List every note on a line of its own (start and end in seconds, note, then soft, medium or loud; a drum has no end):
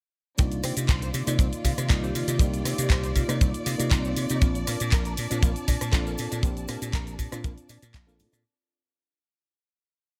0.38 0.60 C2 loud
0.38 4.38 D#3 medium
0.38 1.24 A#3 medium
0.38 0.43 C4 medium
0.38 1.24 D4 medium
0.38 1.24 D#4 medium
0.38 4.38 F4 medium
0.38 1.25 F4 medium
0.38 8.41 D5 medium
0.38 kick loud
0.38 closed hi-hat medium
0.38 cabasa soft
0.38 shaker medium
0.52 closed hi-hat soft
0.52 shaker soft
0.63 0.75 C3 medium
0.63 0.73 C4 medium
0.63 cross-stick medium
0.63 open hi-hat loud
0.63 cabasa medium
0.77 0.90 C3 medium
0.77 closed hi-hat medium
0.77 cabasa soft
0.77 shaker medium
0.89 1.10 C2 medium
0.89 0.99 C5 medium
0.89 kick loud
0.89 clap loud
0.89 closed hi-hat medium
0.89 cabasa soft
0.89 shaker medium
1.02 1.08 C5 medium
1.02 closed hi-hat soft
1.02 shaker soft
1.14 1.25 C3 loud
1.14 open hi-hat medium
1.14 cabasa medium
1.26 1.37 C3 medium
1.26 1.86 A#3 medium
1.26 1.33 D#4 medium
1.26 1.87 D#4 medium
1.26 1.87 F4 medium
1.26 1.87 D5 medium
1.26 closed hi-hat medium
1.26 cabasa soft
1.26 shaker medium
1.39 1.50 C2 medium
1.39 1.46 C4 medium
1.39 kick loud
1.39 closed hi-hat medium
1.39 cabasa soft
1.39 shaker medium
1.53 closed hi-hat soft
1.53 shaker soft
1.65 1.76 C3 loud
1.65 1.74 F4 medium
1.65 kick medium
1.65 open hi-hat loud
1.65 cabasa medium
1.78 1.88 C3 medium
1.78 cross-stick medium
1.78 closed hi-hat medium
1.78 cabasa soft
1.78 shaker medium
1.89 2.11 C2 medium
1.89 2.37 A#3 loud
1.89 2.37 D#4 medium
1.89 2.00 D#4 medium
1.89 2.37 F4 loud
1.89 2.37 D5 medium
1.89 kick loud
1.89 clap loud
1.89 closed hi-hat medium
1.89 cabasa soft
1.89 shaker medium
2.03 2.09 C4 medium
2.03 2.13 G4 medium
2.03 shaker soft
2.15 2.26 C3 medium
2.15 2.32 F4 medium
2.15 open hi-hat medium
2.15 cabasa medium
2.28 2.38 C3 medium
2.28 2.34 D#4 medium
2.28 closed hi-hat medium
2.28 cabasa medium
2.28 shaker medium
2.39 2.61 C2 loud
2.39 3.25 A#3 medium
2.39 2.44 C4 medium
2.39 3.26 D#4 medium
2.39 3.26 G4 loud
2.39 3.25 D5 medium
2.39 kick loud
2.39 closed hi-hat medium
2.39 cabasa soft
2.39 shaker medium
2.54 closed hi-hat soft
2.54 shaker soft
2.65 2.76 C3 medium
2.65 2.75 C4 medium
2.65 cross-stick medium
2.65 open hi-hat loud
2.65 cabasa loud
2.78 2.92 C3 medium
2.78 2.87 G4 medium
2.78 closed hi-hat medium
2.78 cabasa medium
2.78 shaker medium
2.90 3.12 C2 medium
2.90 3.00 C5 medium
2.90 kick loud
2.90 clap loud
2.90 closed hi-hat medium
2.90 cabasa soft
2.90 shaker medium
3.04 3.10 C5 medium
3.04 closed hi-hat soft
3.04 shaker soft
3.16 3.27 C3 loud
3.16 3.32 F4 medium
3.16 kick medium
3.16 open hi-hat loud
3.16 cabasa medium
3.28 3.39 C3 medium
3.28 3.76 A#3 medium
3.28 3.76 D#4 medium
3.28 3.35 D#4 medium
3.28 3.76 F4 loud
3.28 3.76 D5 medium
3.28 cross-stick medium
3.28 closed hi-hat soft
3.28 cabasa medium
3.28 shaker medium
3.41 3.52 C2 medium
3.41 3.47 C4 medium
3.41 kick loud
3.41 closed hi-hat medium
3.41 cabasa soft
3.41 shaker medium
3.54 closed hi-hat soft
3.54 shaker soft
3.66 3.77 C3 loud
3.66 3.83 D#4 medium
3.66 3.76 F4 medium
3.66 open hi-hat loud
3.66 cabasa loud
3.78 3.90 C3 medium
3.78 4.38 A#3 medium
3.78 4.39 D#4 medium
3.78 4.39 F4 loud
3.78 4.39 D5 medium
3.78 closed hi-hat medium
3.78 cabasa soft
3.78 shaker medium
3.91 4.13 C2 medium
3.91 4.47 C4 medium
3.91 4.01 D#4 medium
3.91 kick loud
3.91 clap loud
3.91 closed hi-hat medium
3.91 cabasa soft
3.91 shaker medium
4.05 4.11 C4 medium
4.05 shaker soft
4.17 4.28 C3 medium
4.17 open hi-hat loud
4.17 cabasa loud
4.29 4.40 C3 medium
4.29 4.36 D#4 medium
4.29 closed hi-hat medium
4.29 cabasa medium
4.29 shaker medium
4.41 4.63 A#1 loud
4.41 4.46 A#3 medium
4.41 5.27 C4 medium
4.41 5.27 D4 medium
4.41 5.28 F4 medium
4.41 8.42 A5 medium
4.41 kick loud
4.41 closed hi-hat medium
4.41 cabasa soft
4.41 shaker medium
4.55 closed hi-hat soft
4.55 shaker soft
4.67 4.78 A#2 medium
4.67 4.77 A#3 medium
4.67 cross-stick medium
4.67 open hi-hat loud
4.67 cabasa medium
4.80 4.94 A#2 medium
4.80 closed hi-hat medium
4.80 cabasa medium
4.80 shaker medium
4.92 5.14 A#1 medium
4.92 5.02 A#4 medium
4.92 kick loud
4.92 clap loud
4.92 closed hi-hat medium
4.92 cabasa soft
4.92 shaker medium
5.05 5.12 A#4 medium
5.05 closed hi-hat soft
5.05 shaker soft
5.17 5.29 A#2 loud
5.17 open hi-hat loud
5.17 cabasa loud
5.30 5.41 A#2 loud
5.30 5.90 C4 medium
5.30 5.37 D4 medium
5.30 5.90 D4 medium
5.30 5.91 F4 medium
5.30 closed hi-hat medium
5.30 cabasa medium
5.30 shaker medium
5.42 5.54 A#1 medium
5.42 5.49 A#3 medium
5.42 kick loud
5.42 closed hi-hat medium
5.42 cabasa soft
5.42 shaker medium
5.56 closed hi-hat soft
5.56 shaker soft
5.68 5.79 A#2 loud
5.68 5.78 D4 medium
5.68 kick medium
5.68 open hi-hat loud
5.68 cabasa medium
5.81 5.91 A#2 medium
5.81 cross-stick medium
5.81 closed hi-hat medium
5.81 cabasa medium
5.81 shaker medium
5.92 6.14 A#1 medium
5.92 6.40 C4 medium
5.92 6.03 D4 medium
5.92 6.41 D4 medium
5.92 6.41 F4 loud
5.92 6.40 A4 loud
5.92 kick loud
5.92 clap loud
5.92 closed hi-hat medium
5.92 cabasa soft
5.92 shaker medium
6.06 6.12 A#3 medium
6.06 shaker soft
6.18 6.30 A#2 loud
6.18 open hi-hat loud
6.18 cabasa loud
6.31 6.42 A#2 medium
6.31 6.37 D4 medium
6.31 closed hi-hat medium
6.31 cabasa medium
6.31 shaker medium
6.43 6.65 A#1 loud
6.43 6.48 A#3 medium
6.43 7.29 C4 medium
6.43 7.29 D4 medium
6.43 7.29 G4 loud
6.43 kick loud
6.43 closed hi-hat medium
6.43 cabasa soft
6.43 shaker medium
6.57 closed hi-hat soft
6.57 shaker soft
6.68 6.80 A#2 medium
6.68 6.79 A#3 medium
6.68 cross-stick medium
6.68 open hi-hat loud
6.68 cabasa medium
6.82 6.95 A#2 medium
6.82 closed hi-hat medium
6.82 cabasa medium
6.82 shaker medium
6.93 7.15 A#1 medium
6.93 7.04 A#4 medium
6.93 kick loud
6.93 clap loud
6.93 closed hi-hat medium
6.93 cabasa soft
6.93 shaker medium
7.07 7.13 A#4 medium
7.07 closed hi-hat soft
7.07 shaker soft
7.19 7.30 A#2 loud
7.19 kick medium
7.19 open hi-hat loud
7.19 cabasa loud
7.32 7.43 A#2 loud
7.32 7.79 C4 medium
7.32 7.79 D4 medium
7.32 7.38 D4 medium
7.32 7.79 F4 loud
7.32 cross-stick medium
7.32 closed hi-hat medium
7.32 cabasa medium
7.32 shaker medium
7.44 7.55 A#1 loud
7.44 7.51 A#3 medium
7.44 kick loud
7.44 closed hi-hat medium
7.44 cabasa soft
7.44 shaker medium
7.58 closed hi-hat soft
7.58 shaker soft
7.69 7.81 A#2 medium
7.69 7.79 D4 medium
7.69 open hi-hat loud
7.69 cabasa medium
7.82 7.93 A#2 medium
7.82 closed hi-hat medium
7.82 cabasa medium
7.82 shaker medium
7.94 8.21 A#1 loud
7.94 8.04 D4 medium
7.94 kick loud
7.94 clap loud
7.94 closed hi-hat medium
7.94 cabasa soft
7.94 shaker medium
8.07 8.14 A#3 medium
8.07 8.42 C4 medium
8.07 8.42 D4 medium
8.07 8.42 F4 loud
8.07 8.42 A4 loud
8.07 shaker soft
8.19 8.31 A#2 medium
8.19 open hi-hat loud
8.19 cabasa loud
8.32 8.43 A#2 loud
8.32 8.39 D4 medium
8.32 closed hi-hat medium
8.32 cabasa medium
8.32 shaker medium